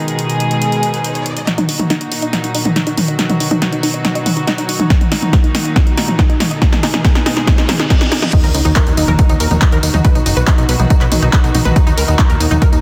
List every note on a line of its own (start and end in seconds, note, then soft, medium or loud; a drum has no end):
0.00 1.46 B2 medium
0.00 1.44 D#3 medium
0.00 1.46 G#3 medium
0.00 1.44 D#4 medium
0.00 1.46 G#4 medium
0.00 riser medium
0.08 closed hi-hat medium
0.19 closed hi-hat medium
0.30 closed hi-hat soft
0.40 closed hi-hat medium
0.51 closed hi-hat medium
0.62 closed hi-hat medium
0.72 closed hi-hat medium
0.83 closed hi-hat medium
0.94 closed hi-hat soft
1.04 closed hi-hat medium
1.15 closed hi-hat medium
1.26 closed hi-hat medium
1.37 closed hi-hat medium
1.47 3.17 A#2 medium
1.47 4.87 D#3 medium
1.47 6.58 F#3 medium
1.47 1.53 D#4 medium
1.47 3.17 D#4 medium
1.47 6.58 F#4 medium
1.47 snare soft
1.47 closed hi-hat medium
1.47 riser medium
1.58 1.63 D#4 loud
1.58 closed hi-hat medium
1.58 mid tom medium
1.69 1.76 D#4 medium
1.69 open hi-hat loud
1.79 1.85 D#4 medium
1.79 closed hi-hat medium
1.79 mid tom medium
1.90 1.95 D#4 loud
1.90 snare soft
1.90 closed hi-hat medium
2.01 2.09 D#4 medium
2.01 closed hi-hat medium
2.12 2.17 D#4 medium
2.12 open hi-hat loud
2.22 2.28 D#4 loud
2.22 closed hi-hat medium
2.33 2.41 D#4 medium
2.33 snare soft
2.33 closed hi-hat medium
2.44 2.49 D#4 medium
2.44 closed hi-hat medium
2.55 2.60 D#4 loud
2.55 open hi-hat loud
2.65 2.73 D#4 medium
2.65 closed hi-hat medium
2.65 mid tom medium
2.76 2.81 D#4 medium
2.76 snare medium
2.76 closed hi-hat medium
2.87 2.92 D#4 loud
2.87 closed hi-hat medium
2.97 3.05 D#4 medium
2.97 open hi-hat loud
2.97 mid tom medium
3.08 3.13 D#4 medium
3.08 closed hi-hat medium
3.19 4.89 B2 medium
3.19 3.24 D#4 loud
3.19 8.29 D#4 medium
3.19 snare medium
3.19 closed hi-hat medium
3.30 3.37 D#4 medium
3.30 closed hi-hat medium
3.30 mid tom medium
3.40 3.45 D#4 medium
3.40 open hi-hat loud
3.51 3.56 D#4 loud
3.51 closed hi-hat soft
3.51 mid tom medium
3.62 3.69 D#4 medium
3.62 snare medium
3.62 closed hi-hat medium
3.72 3.78 D#4 medium
3.72 closed hi-hat medium
3.83 3.88 D#4 loud
3.83 open hi-hat loud
3.94 4.01 D#4 medium
3.94 closed hi-hat medium
4.04 4.10 D#4 medium
4.04 snare medium
4.04 closed hi-hat medium
4.15 4.20 D#4 loud
4.15 closed hi-hat medium
4.26 4.34 D#4 medium
4.26 open hi-hat loud
4.26 mid tom medium
4.37 4.42 D#4 medium
4.37 closed hi-hat medium
4.47 4.52 D#4 loud
4.47 snare medium
4.47 closed hi-hat medium
4.58 4.66 D#4 medium
4.58 closed hi-hat medium
4.69 4.74 D#4 medium
4.69 open hi-hat loud
4.79 4.85 D#4 loud
4.79 closed hi-hat medium
4.79 mid tom medium
4.90 6.60 A#2 medium
4.90 6.60 D#3 medium
4.90 kick loud
4.90 snare medium
4.90 closed hi-hat medium
5.01 5.06 D#4 medium
5.01 closed hi-hat medium
5.01 mid tom medium
5.12 5.17 D#4 medium
5.12 snare medium
5.12 open hi-hat loud
5.22 5.30 D#4 medium
5.22 closed hi-hat soft
5.22 mid tom medium
5.33 5.38 D#4 medium
5.33 kick loud
5.33 snare medium
5.33 closed hi-hat medium
5.44 5.49 D#4 medium
5.44 closed hi-hat soft
5.55 5.62 D#4 medium
5.55 snare medium
5.55 open hi-hat loud
5.65 5.70 D#4 medium
5.65 closed hi-hat medium
5.76 5.84 D#4 medium
5.76 kick loud
5.76 snare medium
5.76 closed hi-hat medium
5.87 5.92 D#4 medium
5.87 closed hi-hat medium
5.97 6.02 D#4 loud
5.97 snare medium
5.97 open hi-hat loud
6.08 6.16 D#4 medium
6.08 closed hi-hat soft
6.08 mid tom medium
6.19 6.24 D#4 medium
6.19 kick loud
6.19 snare medium
6.19 closed hi-hat medium
6.29 6.35 D#4 medium
6.29 closed hi-hat medium
6.40 6.48 D#4 medium
6.40 snare medium
6.40 open hi-hat loud
6.40 mid tom medium
6.51 6.56 D#4 medium
6.51 closed hi-hat medium
6.62 8.31 B2 medium
6.62 8.31 D#3 medium
6.62 8.31 G#3 medium
6.62 6.69 D#4 medium
6.62 8.31 G#4 medium
6.62 kick loud
6.62 snare medium
6.62 closed hi-hat medium
6.72 6.77 D#4 medium
6.72 snare medium
6.72 closed hi-hat medium
6.72 mid tom medium
6.83 6.88 D#4 loud
6.83 snare medium
6.83 open hi-hat loud
6.94 7.01 D#4 medium
6.94 snare medium
6.94 closed hi-hat soft
6.94 mid tom medium
7.04 7.12 D#4 medium
7.04 kick loud
7.04 snare loud
7.04 closed hi-hat medium
7.15 7.20 D#4 medium
7.15 snare medium
7.15 closed hi-hat soft
7.26 7.31 D#4 loud
7.26 snare medium
7.26 open hi-hat loud
7.37 7.44 D#4 medium
7.37 snare medium
7.37 closed hi-hat medium
7.47 7.55 D#4 medium
7.47 kick loud
7.47 snare loud
7.47 closed hi-hat medium
7.47 reverse cymbal medium
7.58 7.63 D#4 medium
7.58 snare medium
7.58 closed hi-hat medium
7.69 7.76 D#4 medium
7.69 snare loud
7.69 open hi-hat loud
7.69 mid tom medium
7.79 7.85 D#4 medium
7.79 snare medium
7.90 7.98 D#4 medium
7.90 kick loud
7.90 snare loud
7.90 closed hi-hat medium
8.01 8.06 D#4 medium
8.01 snare loud
8.01 closed hi-hat medium
8.12 8.19 D#4 medium
8.12 snare loud
8.12 open hi-hat loud
8.22 8.27 D#4 medium
8.22 snare loud
8.22 closed hi-hat medium
8.22 mid tom medium
8.33 10.03 A#2 medium
8.33 12.81 D#3 medium
8.33 10.03 F#3 medium
8.33 10.03 D#4 medium
8.33 8.38 D#4 loud
8.33 12.81 F#4 loud
8.33 kick loud
8.33 closed hi-hat medium
8.33 crash loud
8.33 ride medium
8.33 tambourine soft
8.33 sub drop medium
8.44 8.50 D#2 medium
8.44 8.49 A#4 loud
8.44 closed hi-hat medium
8.44 tambourine soft
8.54 8.61 C#2 loud
8.54 8.62 D#4 medium
8.54 open hi-hat loud
8.54 ride medium
8.54 tambourine medium
8.65 8.72 D#2 medium
8.65 8.70 D#4 loud
8.65 closed hi-hat medium
8.65 tambourine soft
8.76 8.81 A#4 loud
8.76 kick loud
8.76 clap loud
8.76 closed hi-hat medium
8.76 ride medium
8.76 tambourine soft
8.87 8.93 D#2 medium
8.87 8.94 D#4 medium
8.87 closed hi-hat medium
8.87 tambourine soft
8.97 9.04 D#2 loud
8.97 9.03 D#4 loud
8.97 open hi-hat loud
8.97 ride medium
8.97 tambourine medium
9.08 9.15 D#2 medium
9.08 9.13 A#4 loud
9.08 closed hi-hat medium
9.08 mid tom medium
9.08 tambourine soft
9.19 9.27 D#4 medium
9.19 kick loud
9.19 closed hi-hat medium
9.19 ride medium
9.19 tambourine soft
9.29 9.36 D#2 medium
9.29 9.35 D#4 loud
9.29 closed hi-hat medium
9.29 tambourine soft
9.40 9.47 D#2 loud
9.40 9.45 A#4 loud
9.40 open hi-hat loud
9.40 ride medium
9.40 tambourine medium
9.51 9.58 D#2 loud
9.51 9.59 D#4 medium
9.51 closed hi-hat medium
9.51 mid tom medium
9.51 tambourine soft
9.62 9.67 D#4 loud
9.62 kick loud
9.62 clap loud
9.62 closed hi-hat medium
9.62 ride medium
9.62 tambourine soft
9.72 9.79 D#2 medium
9.72 9.78 A#4 loud
9.72 closed hi-hat medium
9.72 tambourine soft
9.83 9.90 D#2 loud
9.83 9.91 D#4 medium
9.83 open hi-hat loud
9.83 ride medium
9.83 tambourine medium
9.94 10.01 D#2 medium
9.94 9.99 D#4 loud
9.94 closed hi-hat medium
9.94 mid tom medium
9.94 tambourine soft
10.05 11.74 B2 medium
10.05 12.81 F#3 medium
10.05 12.81 D#4 medium
10.05 10.10 B4 loud
10.05 kick loud
10.05 closed hi-hat medium
10.05 ride medium
10.05 tambourine soft
10.15 10.22 B1 medium
10.15 10.23 D#4 medium
10.15 closed hi-hat medium
10.15 tambourine soft
10.26 10.33 F#1 loud
10.26 10.31 D#4 loud
10.26 open hi-hat loud
10.26 ride medium
10.26 tambourine medium
10.37 10.43 B1 medium
10.37 10.42 B4 loud
10.37 closed hi-hat medium
10.37 tambourine soft
10.47 10.55 D#4 medium
10.47 kick loud
10.47 clap loud
10.47 closed hi-hat medium
10.47 ride medium
10.47 tambourine soft
10.58 10.65 B1 medium
10.58 10.63 D#4 loud
10.58 closed hi-hat medium
10.58 tambourine soft
10.69 10.75 B1 loud
10.69 10.74 B4 loud
10.69 open hi-hat loud
10.69 ride medium
10.69 tambourine medium
10.79 10.86 B1 medium
10.79 10.87 D#4 medium
10.79 closed hi-hat medium
10.79 mid tom medium
10.79 tambourine soft
10.90 10.95 D#4 loud
10.90 kick loud
10.90 closed hi-hat medium
10.90 ride medium
10.90 tambourine soft
11.01 11.08 B1 medium
11.01 11.06 B4 loud
11.01 clap soft
11.01 closed hi-hat medium
11.01 tambourine soft
11.12 11.18 B1 loud
11.12 11.19 D#4 medium
11.12 open hi-hat loud
11.12 mid tom medium
11.12 ride medium
11.12 tambourine medium
11.22 11.29 B1 medium
11.22 11.28 D#4 loud
11.22 closed hi-hat medium
11.22 tambourine soft
11.33 11.38 B4 loud
11.33 kick loud
11.33 clap loud
11.33 closed hi-hat medium
11.33 ride medium
11.33 tambourine soft
11.44 11.50 B1 medium
11.44 11.52 D#4 medium
11.44 closed hi-hat medium
11.44 tambourine soft
11.55 11.61 B1 medium
11.55 11.60 D#4 loud
11.55 open hi-hat loud
11.55 mid tom medium
11.55 ride medium
11.55 tambourine medium
11.65 11.72 B1 medium
11.65 11.70 B4 loud
11.65 closed hi-hat medium
11.65 mid tom medium
11.65 tambourine soft
11.76 12.81 A#2 medium
11.76 11.84 D#4 medium
11.76 kick loud
11.76 closed hi-hat medium
11.76 ride medium
11.76 tambourine soft
11.87 11.93 D#2 medium
11.87 11.92 D#4 loud
11.87 closed hi-hat soft
11.87 tambourine soft
11.97 12.04 C#2 loud
11.97 12.03 A#4 loud
11.97 open hi-hat loud
11.97 ride medium
11.97 tambourine medium
12.08 12.15 D#2 medium
12.08 12.16 D#4 medium
12.08 closed hi-hat medium
12.08 tambourine soft
12.19 12.24 D#4 loud
12.19 kick loud
12.19 clap loud
12.19 closed hi-hat medium
12.19 ride medium
12.19 tambourine soft
12.30 12.36 D#2 medium
12.30 12.35 A#4 loud
12.30 closed hi-hat soft
12.30 tambourine soft
12.40 12.47 D#2 loud
12.40 12.48 D#4 medium
12.40 open hi-hat loud
12.40 ride medium
12.40 tambourine medium
12.51 12.58 D#2 medium
12.51 12.56 D#4 loud
12.51 closed hi-hat medium
12.51 mid tom medium
12.51 tambourine soft
12.62 12.67 A#4 loud
12.62 kick loud
12.62 closed hi-hat medium
12.62 ride medium
12.62 tambourine soft
12.72 12.79 D#2 medium
12.72 12.80 D#4 medium
12.72 closed hi-hat medium
12.72 tambourine soft